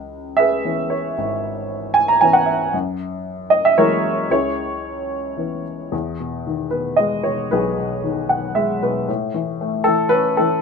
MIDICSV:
0, 0, Header, 1, 2, 480
1, 0, Start_track
1, 0, Tempo, 524017
1, 1076, Time_signature, 3, 2, 24, 8
1, 4421, Tempo, 546448
1, 5861, Tempo, 523560
1, 9667, End_track
2, 0, Start_track
2, 0, Title_t, "Upright piano"
2, 0, Program_c, 0, 0
2, 0, Control_c, 0, 64, 127
2, 0, Note_on_c, 0, 37, 46
2, 335, Note_on_c, 0, 76, 92
2, 356, Note_on_c, 0, 68, 58
2, 358, Note_on_c, 0, 71, 60
2, 592, Note_on_c, 0, 52, 39
2, 594, Note_on_c, 0, 59, 38
2, 598, Note_on_c, 0, 61, 44
2, 823, Note_on_c, 0, 73, 56
2, 842, Note_off_c, 0, 76, 0
2, 1042, Note_off_c, 0, 37, 0
2, 1042, Note_off_c, 0, 68, 0
2, 1043, Note_off_c, 0, 71, 0
2, 1053, Note_off_c, 0, 73, 0
2, 1061, Note_off_c, 0, 52, 0
2, 1062, Note_off_c, 0, 59, 0
2, 1064, Note_off_c, 0, 61, 0
2, 1079, Note_on_c, 0, 32, 52
2, 1775, Note_on_c, 0, 80, 88
2, 1908, Note_off_c, 0, 80, 0
2, 1908, Note_on_c, 0, 82, 86
2, 2023, Note_on_c, 0, 80, 87
2, 2030, Note_on_c, 0, 52, 45
2, 2033, Note_on_c, 0, 59, 40
2, 2034, Note_off_c, 0, 82, 0
2, 2036, Note_on_c, 0, 61, 52
2, 2137, Note_on_c, 0, 78, 81
2, 2151, Note_off_c, 0, 80, 0
2, 2253, Note_on_c, 0, 76, 53
2, 2267, Note_off_c, 0, 78, 0
2, 2474, Note_off_c, 0, 32, 0
2, 2483, Note_off_c, 0, 76, 0
2, 2493, Note_off_c, 0, 52, 0
2, 2495, Note_off_c, 0, 59, 0
2, 2496, Note_off_c, 0, 61, 0
2, 2507, Note_on_c, 0, 42, 63
2, 2519, Control_c, 0, 64, 0
2, 2698, Control_c, 0, 64, 127
2, 3208, Note_on_c, 0, 75, 83
2, 3326, Note_off_c, 0, 75, 0
2, 3344, Note_on_c, 0, 76, 90
2, 3460, Note_on_c, 0, 73, 85
2, 3463, Note_on_c, 0, 52, 50
2, 3465, Note_on_c, 0, 70, 64
2, 3466, Note_off_c, 0, 76, 0
2, 3466, Note_on_c, 0, 64, 60
2, 3467, Note_on_c, 0, 58, 55
2, 3469, Note_on_c, 0, 54, 46
2, 3470, Note_on_c, 0, 56, 45
2, 3901, Note_off_c, 0, 42, 0
2, 3905, Note_off_c, 0, 73, 0
2, 3908, Note_off_c, 0, 70, 0
2, 3909, Note_off_c, 0, 64, 0
2, 3926, Note_off_c, 0, 52, 0
2, 3928, Note_off_c, 0, 58, 0
2, 3929, Note_off_c, 0, 54, 0
2, 3929, Note_off_c, 0, 56, 0
2, 3938, Note_on_c, 0, 37, 48
2, 3952, Note_on_c, 0, 64, 55
2, 3952, Note_on_c, 0, 73, 75
2, 3953, Control_c, 0, 64, 0
2, 3954, Note_on_c, 0, 68, 50
2, 4092, Control_c, 0, 64, 127
2, 4900, Note_on_c, 0, 52, 39
2, 4905, Note_on_c, 0, 59, 32
2, 4907, Note_on_c, 0, 61, 39
2, 5116, Note_off_c, 0, 73, 0
2, 5117, Note_off_c, 0, 64, 0
2, 5118, Note_off_c, 0, 68, 0
2, 5353, Note_off_c, 0, 37, 0
2, 5374, Note_off_c, 0, 52, 0
2, 5376, Note_off_c, 0, 59, 0
2, 5378, Note_off_c, 0, 61, 0
2, 5381, Note_on_c, 0, 40, 50
2, 5400, Control_c, 0, 64, 0
2, 5563, Control_c, 0, 64, 127
2, 5625, Note_on_c, 0, 47, 38
2, 5863, Note_on_c, 0, 51, 48
2, 6081, Note_on_c, 0, 71, 64
2, 6087, Note_off_c, 0, 47, 0
2, 6101, Note_on_c, 0, 47, 37
2, 6319, Note_on_c, 0, 75, 75
2, 6342, Note_off_c, 0, 71, 0
2, 6344, Note_on_c, 0, 56, 48
2, 6556, Note_off_c, 0, 75, 0
2, 6566, Note_on_c, 0, 73, 57
2, 6567, Note_off_c, 0, 47, 0
2, 6581, Note_on_c, 0, 47, 44
2, 6784, Note_off_c, 0, 40, 0
2, 6797, Note_off_c, 0, 51, 0
2, 6819, Note_on_c, 0, 71, 72
2, 6822, Note_off_c, 0, 73, 0
2, 6830, Note_on_c, 0, 35, 54
2, 6834, Note_on_c, 0, 68, 58
2, 7046, Note_off_c, 0, 47, 0
2, 7059, Note_on_c, 0, 47, 45
2, 7271, Note_off_c, 0, 56, 0
2, 7301, Note_on_c, 0, 51, 48
2, 7521, Note_off_c, 0, 47, 0
2, 7535, Note_on_c, 0, 47, 40
2, 7537, Note_on_c, 0, 78, 63
2, 7762, Note_off_c, 0, 78, 0
2, 7772, Note_on_c, 0, 76, 68
2, 7779, Note_on_c, 0, 56, 55
2, 7981, Note_off_c, 0, 71, 0
2, 7989, Note_off_c, 0, 68, 0
2, 8000, Note_off_c, 0, 76, 0
2, 8007, Note_off_c, 0, 47, 0
2, 8021, Note_on_c, 0, 47, 57
2, 8026, Note_on_c, 0, 71, 66
2, 8227, Note_off_c, 0, 35, 0
2, 8233, Note_off_c, 0, 51, 0
2, 8246, Note_off_c, 0, 56, 0
2, 8247, Note_off_c, 0, 71, 0
2, 8254, Note_off_c, 0, 47, 0
2, 8260, Note_on_c, 0, 45, 62
2, 8274, Control_c, 0, 64, 0
2, 8437, Control_c, 0, 64, 127
2, 8497, Note_on_c, 0, 52, 53
2, 8743, Note_on_c, 0, 57, 50
2, 8955, Note_on_c, 0, 69, 91
2, 8967, Note_off_c, 0, 52, 0
2, 8981, Note_on_c, 0, 52, 47
2, 9185, Note_on_c, 0, 71, 98
2, 9189, Note_off_c, 0, 69, 0
2, 9212, Note_on_c, 0, 61, 63
2, 9442, Note_on_c, 0, 69, 78
2, 9445, Note_off_c, 0, 52, 0
2, 9451, Note_off_c, 0, 71, 0
2, 9458, Note_on_c, 0, 52, 50
2, 9665, Note_off_c, 0, 45, 0
2, 9667, Note_off_c, 0, 52, 0
2, 9667, Note_off_c, 0, 57, 0
2, 9667, Note_off_c, 0, 61, 0
2, 9667, Note_off_c, 0, 69, 0
2, 9667, End_track
0, 0, End_of_file